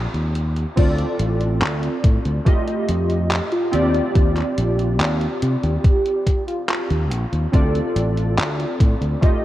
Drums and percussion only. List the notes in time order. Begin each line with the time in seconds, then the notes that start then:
0.14 closed hi-hat
0.35 closed hi-hat
0.57 closed hi-hat
0.77 kick, closed hi-hat, crash
0.99 closed hi-hat
1.19 closed hi-hat
1.41 closed hi-hat
1.62 clap, closed hi-hat
1.83 closed hi-hat
2.04 kick, closed hi-hat
2.25 closed hi-hat
2.46 kick, closed hi-hat
2.68 closed hi-hat
2.89 closed hi-hat
3.10 closed hi-hat
3.31 clap, closed hi-hat
3.52 closed hi-hat
3.73 closed hi-hat
3.94 closed hi-hat
4.15 kick, closed hi-hat
4.37 clap, closed hi-hat
4.58 closed hi-hat
4.79 closed hi-hat
5.00 clap, closed hi-hat
5.21 closed hi-hat
5.42 closed hi-hat
5.63 closed hi-hat
5.84 kick, closed hi-hat
6.06 closed hi-hat
6.27 kick, closed hi-hat
6.48 closed hi-hat
6.69 clap, closed hi-hat
6.90 closed hi-hat
7.12 closed hi-hat
7.33 closed hi-hat
7.54 kick, closed hi-hat
7.75 closed hi-hat
7.96 closed hi-hat
8.17 closed hi-hat
8.38 clap, closed hi-hat
8.60 closed hi-hat
8.80 kick, closed hi-hat
9.02 closed hi-hat
9.23 kick, closed hi-hat